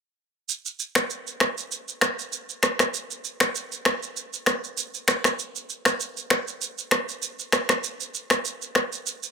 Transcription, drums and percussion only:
0.49 shaker medium
0.66 shaker medium
0.79 shaker medium
0.95 finger snap medium
0.95 cross-stick loud
0.95 shaker soft
1.10 shaker medium
1.27 shaker soft
1.40 finger snap medium
1.40 cross-stick medium
1.58 shaker soft
1.71 shaker medium
1.88 shaker medium
2.01 finger snap medium
2.01 cross-stick loud
2.01 shaker soft
2.19 shaker soft
2.32 shaker medium
2.49 shaker soft
2.63 finger snap medium
2.63 cross-stick loud
2.63 shaker medium
2.79 finger snap medium
2.79 cross-stick medium
2.79 shaker medium
2.94 shaker medium
3.11 shaker medium
3.24 shaker medium
3.40 finger snap medium
3.40 cross-stick loud
3.40 shaker soft
3.55 shaker medium
3.72 shaker soft
3.85 finger snap medium
3.85 cross-stick loud
4.03 shaker soft
4.17 shaker medium
4.33 shaker medium
4.46 finger snap medium
4.46 cross-stick loud
4.46 shaker soft
4.64 shaker soft
4.77 shaker medium
4.94 shaker soft
5.08 finger snap medium
5.08 cross-stick loud
5.08 shaker medium
5.24 finger snap medium
5.24 cross-stick medium
5.24 shaker medium
5.39 shaker medium
5.56 shaker medium
5.69 shaker medium
5.85 finger snap medium
5.85 cross-stick loud
5.85 shaker soft
6.00 shaker medium
6.17 shaker soft
6.30 finger snap medium
6.30 cross-stick medium
6.48 shaker soft
6.61 shaker medium
6.78 shaker medium
6.91 finger snap medium
6.91 cross-stick loud
6.91 shaker soft
7.09 shaker soft
7.22 shaker medium
7.39 shaker soft
7.52 finger snap medium
7.52 cross-stick medium
7.52 shaker medium
7.69 finger snap medium
7.69 cross-stick medium
7.69 shaker medium
7.84 shaker medium
8.00 shaker medium
8.14 shaker medium
8.30 finger snap medium
8.30 cross-stick loud
8.30 shaker soft
8.45 shaker medium
8.62 shaker soft
8.75 finger snap medium
8.75 cross-stick medium
8.93 shaker soft
9.06 shaker medium
9.23 shaker medium

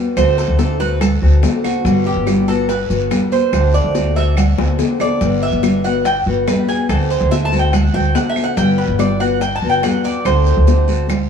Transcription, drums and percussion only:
0.17 high bongo medium
0.17 long guiro medium
0.17 claves medium
0.17 maracas medium
0.38 high bongo soft
0.38 high conga soft
0.38 maracas medium
0.59 high bongo medium
0.59 high conga loud
0.59 short guiro medium
0.59 maracas medium
0.80 high conga soft
0.80 short guiro medium
0.80 maracas soft
1.01 high bongo medium
1.01 high conga soft
1.01 low conga medium
1.01 long guiro medium
1.01 claves medium
1.01 maracas medium
1.43 high bongo medium
1.43 low bongo medium
1.43 high conga medium
1.43 short guiro medium
1.43 maracas medium
1.64 high bongo soft
1.64 high conga medium
1.64 short guiro medium
1.64 claves medium
1.64 maracas soft
1.85 high bongo medium
1.85 high conga soft
1.85 long guiro medium
1.85 maracas medium
2.06 high bongo soft
2.06 high conga soft
2.27 high bongo medium
2.27 high conga medium
2.27 short guiro medium
2.27 claves medium
2.27 maracas medium
2.48 high conga soft
2.48 short guiro medium
2.48 maracas soft
2.69 high bongo medium
2.69 high conga soft
2.69 long guiro medium
2.69 maracas medium
2.90 high bongo soft
2.90 high conga soft
2.90 maracas medium
3.11 high bongo medium
3.11 low bongo medium
3.11 high conga medium
3.11 short guiro medium
3.11 claves medium
3.11 maracas medium
3.32 high bongo soft
3.32 high conga medium
3.32 short guiro medium
3.32 maracas soft
3.53 high bongo medium
3.53 high conga soft
3.53 long guiro medium
3.53 claves medium
3.53 maracas medium
3.74 high bongo soft
3.74 high conga soft
3.74 maracas medium
3.95 high bongo medium
3.95 high conga medium
3.95 short guiro medium
3.95 maracas medium
4.16 high conga soft
4.16 short guiro medium
4.16 maracas soft
4.37 high bongo medium
4.37 high conga soft
4.37 low conga medium
4.37 long guiro medium
4.37 claves medium
4.37 maracas medium
4.58 high bongo medium
4.79 low bongo medium
4.79 high conga medium
4.79 short guiro medium
4.79 maracas medium
5.00 low bongo medium
5.00 high conga medium
5.00 short guiro medium
5.00 claves medium
5.00 maracas soft
5.21 high bongo medium
5.21 long guiro medium
5.21 maracas medium
5.42 high bongo soft
5.42 high conga soft
5.63 high bongo medium
5.63 high conga loud
5.63 short guiro medium
5.63 claves medium
5.63 maracas medium
5.84 high conga soft
5.84 short guiro medium
5.84 maracas soft
6.05 high bongo medium
6.05 high conga soft
6.05 long guiro medium
6.05 maracas medium
6.27 high bongo soft
6.27 high conga soft
6.47 high bongo medium
6.47 low bongo medium
6.47 high conga medium
6.47 short guiro medium
6.47 claves medium
6.47 maracas medium
6.69 high bongo soft
6.69 high conga medium
6.69 short guiro medium
6.69 maracas soft
6.89 high bongo medium
6.89 long guiro medium
6.89 claves medium
6.89 maracas medium
7.11 high bongo soft
7.11 high conga soft
7.11 maracas medium
7.31 high bongo medium
7.31 high conga loud
7.31 short guiro medium
7.31 maracas medium
7.52 high conga soft
7.52 short guiro medium
7.52 maracas soft
7.73 high bongo medium
7.73 high conga soft
7.73 low conga medium
7.73 long guiro medium
7.73 claves medium
7.73 maracas medium
7.95 high conga soft
7.95 low conga medium
8.15 high bongo medium
8.15 low bongo medium
8.15 high conga medium
8.15 short guiro medium
8.15 maracas medium
8.36 high bongo soft
8.36 high conga medium
8.36 short guiro medium
8.36 claves medium
8.36 maracas soft
8.57 high bongo medium
8.57 long guiro medium
8.57 maracas medium
8.78 high bongo soft
8.78 high conga soft
8.99 high bongo medium
8.99 high conga loud
8.99 short guiro medium
8.99 claves medium
8.99 maracas medium
9.20 high conga soft
9.20 short guiro medium
9.20 maracas soft
9.41 high bongo medium
9.41 high conga soft
9.41 long guiro medium
9.41 maracas medium
9.62 high bongo soft
9.62 high conga soft
9.83 high bongo medium
9.83 low bongo medium
9.83 high conga medium
9.83 short guiro medium
9.83 claves medium
9.83 maracas medium
10.04 high bongo soft
10.04 high conga medium
10.04 short guiro medium
10.04 maracas soft
10.25 high bongo medium
10.25 high conga soft
10.25 long guiro medium
10.25 claves medium
10.25 maracas medium
10.46 high bongo soft
10.46 high conga soft
10.46 maracas medium
10.67 high bongo medium
10.67 high conga medium
10.67 short guiro medium
10.67 maracas medium
10.88 high conga soft
10.88 short guiro medium
10.88 maracas soft
11.09 high bongo medium
11.09 high conga soft
11.09 low conga medium
11.09 long guiro medium
11.09 claves medium
11.09 maracas medium

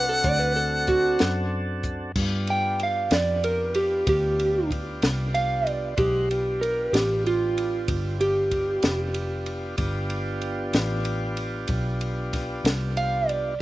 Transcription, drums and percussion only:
0.24 kick medium
0.24 closed hi-hat medium
0.87 kick medium
0.87 closed hi-hat medium
1.19 snare loud
1.19 closed hi-hat medium
1.83 kick medium
1.83 closed hi-hat medium
2.15 kick loud
2.15 crash medium
2.47 ride medium
2.79 ride medium
3.11 snare loud
3.11 ride medium
3.44 ride medium
3.74 ride medium
4.07 kick medium
4.07 ride medium
4.39 ride medium
4.71 kick medium
4.71 ride medium
5.02 snare loud
5.02 ride medium
5.35 ride medium
5.67 ride soft
5.97 kick medium
5.97 ride medium
6.31 ride soft
6.63 ride medium
6.94 snare medium
6.94 ride medium
7.26 ride soft
7.58 ride medium
7.88 kick medium
7.88 ride medium
8.21 ride medium
8.51 kick medium
8.51 ride medium
8.82 snare loud
8.82 ride medium
9.14 ride medium
9.46 ride medium
9.78 kick loud
9.78 ride medium
10.10 ride medium
10.41 ride medium
10.73 snare medium
10.73 ride medium
11.05 ride medium
11.37 ride medium
11.68 kick medium
11.68 ride medium
12.01 ride medium
12.33 kick medium
12.33 snare soft
12.33 ride medium
12.65 snare loud
12.65 ride medium
12.97 ride medium
13.29 ride medium

